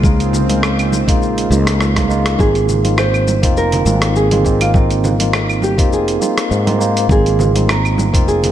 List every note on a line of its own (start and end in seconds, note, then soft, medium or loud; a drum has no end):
0.00 1.08 C#2 loud
0.00 2.35 C#3 medium
0.00 2.35 G#3 medium
0.00 0.45 G#3 medium
0.00 0.45 A#3 medium
0.00 2.35 F4 medium
0.00 1.76 G#4 medium
0.00 kick loud
0.00 high conga medium
0.04 2.37 C4 medium
0.04 0.46 D#4 medium
0.04 0.46 F4 medium
0.04 shaker soft
0.20 closed hi-hat soft
0.20 shaker soft
0.33 low conga medium
0.33 shaker medium
0.48 1.04 G#3 medium
0.48 1.04 A#3 medium
0.48 1.05 D#4 medium
0.48 1.05 F4 medium
0.48 closed hi-hat medium
0.48 high conga medium
0.48 shaker soft
0.63 cross-stick medium
0.63 claves medium
0.63 shaker soft
0.79 closed hi-hat soft
0.79 claves medium
0.79 shaker soft
0.93 high conga medium
0.93 shaker medium
1.07 1.47 A#1 loud
1.07 1.47 G#3 medium
1.07 1.48 A#3 medium
1.07 1.48 D#4 medium
1.07 1.48 F4 loud
1.07 kick loud
1.07 closed hi-hat medium
1.07 shaker soft
1.22 shaker soft
1.38 closed hi-hat soft
1.38 shaker soft
1.50 2.35 C#2 loud
1.50 1.92 G#3 medium
1.50 1.93 A#3 medium
1.50 1.93 D#4 medium
1.50 1.93 F4 medium
1.50 high conga medium
1.50 shaker medium
1.67 cross-stick medium
1.67 closed hi-hat medium
1.67 shaker soft
1.81 cross-stick medium
1.81 shaker soft
1.95 2.07 G#3 medium
1.95 2.08 A#3 medium
1.95 2.08 D#4 medium
1.95 2.08 F4 loud
1.95 kick medium
1.95 cross-stick medium
1.95 closed hi-hat soft
1.95 high conga medium
1.95 shaker soft
2.08 2.35 G#3 medium
2.08 2.36 A#3 medium
2.08 2.36 D#4 medium
2.08 2.36 F4 medium
2.08 shaker medium
2.26 cross-stick medium
2.26 closed hi-hat medium
2.26 shaker soft
2.38 3.43 G#1 medium
2.38 2.80 A#3 medium
2.38 2.80 C4 medium
2.38 2.81 D#4 medium
2.38 2.81 F4 medium
2.38 2.94 G#4 loud
2.38 kick loud
2.38 high conga loud
2.38 shaker soft
2.55 closed hi-hat soft
2.55 shaker soft
2.69 low conga medium
2.69 shaker medium
2.83 3.39 A#3 medium
2.83 3.39 C4 medium
2.83 3.40 D#4 medium
2.83 3.40 F4 medium
2.83 closed hi-hat medium
2.83 high conga medium
2.83 shaker soft
2.98 3.53 C5 loud
2.98 cross-stick medium
2.98 claves medium
2.98 shaker soft
3.14 claves medium
3.14 shaker soft
3.28 high conga medium
3.28 shaker medium
3.42 3.82 F1 loud
3.42 3.82 A#3 medium
3.42 3.83 C4 medium
3.42 3.83 D#4 medium
3.42 3.83 F4 loud
3.42 kick loud
3.42 closed hi-hat medium
3.42 shaker soft
3.57 4.16 A#4 loud
3.57 shaker soft
3.72 closed hi-hat soft
3.72 low conga medium
3.72 shaker soft
3.85 5.78 G#1 loud
3.85 4.27 A#3 medium
3.85 4.27 C4 medium
3.85 4.28 D#4 medium
3.85 4.28 F4 medium
3.85 high conga medium
3.85 shaker medium
4.02 cross-stick medium
4.02 closed hi-hat medium
4.02 shaker soft
4.16 4.63 G#4 loud
4.16 shaker soft
4.31 4.43 A#3 medium
4.31 4.43 C4 medium
4.31 4.43 D#4 medium
4.31 4.44 F4 medium
4.31 closed hi-hat soft
4.31 high conga loud
4.31 low conga medium
4.44 4.71 A#3 medium
4.44 4.71 C4 medium
4.44 4.71 D#4 medium
4.44 4.72 F4 medium
4.44 kick medium
4.44 shaker medium
4.61 5.66 F4 medium
4.61 closed hi-hat medium
4.61 claves medium
4.61 shaker soft
4.73 5.15 A#3 medium
4.73 5.16 C4 medium
4.73 5.16 D#4 medium
4.73 5.17 F4 medium
4.73 kick loud
4.73 high conga loud
4.73 shaker soft
4.91 closed hi-hat soft
4.91 shaker soft
5.04 low conga medium
5.04 shaker medium
5.19 5.74 A#3 medium
5.19 5.75 C4 medium
5.19 5.75 D#4 medium
5.19 5.75 F4 medium
5.19 closed hi-hat medium
5.19 high conga medium
5.19 shaker soft
5.33 cross-stick medium
5.33 claves medium
5.33 shaker soft
5.49 claves medium
5.49 shaker soft
5.62 5.92 G4 medium
5.62 high conga medium
5.62 shaker medium
5.77 6.17 F1 loud
5.77 6.18 A#3 medium
5.77 6.18 C4 medium
5.77 6.18 D#4 medium
5.77 6.19 F4 loud
5.77 kick loud
5.77 closed hi-hat medium
5.77 shaker soft
5.93 6.47 G#4 medium
5.93 shaker soft
6.08 closed hi-hat soft
6.08 shaker soft
6.20 6.62 A#3 medium
6.20 6.63 C4 medium
6.20 6.63 D#4 medium
6.20 6.63 F4 medium
6.20 high conga medium
6.20 shaker medium
6.38 cross-stick medium
6.38 closed hi-hat medium
6.38 shaker soft
6.51 7.06 G#2 medium
6.51 shaker soft
6.65 6.77 A#3 medium
6.65 6.78 C4 medium
6.65 6.78 D#4 medium
6.65 6.78 F4 medium
6.65 closed hi-hat soft
6.65 high conga loud
6.79 7.06 A#3 medium
6.79 7.06 C4 medium
6.79 7.06 D#4 medium
6.79 7.07 F4 medium
6.79 shaker medium
6.97 closed hi-hat medium
6.97 shaker soft
7.09 8.14 G#1 loud
7.09 7.51 A#3 medium
7.09 7.51 C4 medium
7.09 7.51 D#4 medium
7.09 7.52 F4 medium
7.09 7.70 G#4 loud
7.09 kick loud
7.09 high conga loud
7.09 shaker soft
7.26 closed hi-hat soft
7.26 shaker soft
7.39 low conga loud
7.39 shaker medium
7.54 8.10 A#3 medium
7.54 8.10 C4 medium
7.54 8.10 D#4 medium
7.54 8.11 F4 medium
7.54 closed hi-hat medium
7.54 high conga medium
7.54 shaker soft
7.69 8.28 A#4 loud
7.69 cross-stick medium
7.69 claves medium
7.69 shaker soft
7.85 claves medium
7.85 shaker soft
7.98 high conga loud
7.98 shaker medium
8.13 8.52 F1 loud
8.13 8.52 A#3 medium
8.13 8.52 C4 medium
8.13 8.52 D#4 medium
8.13 8.52 F4 loud
8.13 kick loud
8.13 closed hi-hat medium
8.13 shaker soft
8.28 8.52 G#4 medium
8.28 shaker soft
8.44 closed hi-hat soft
8.44 low conga medium
8.44 shaker soft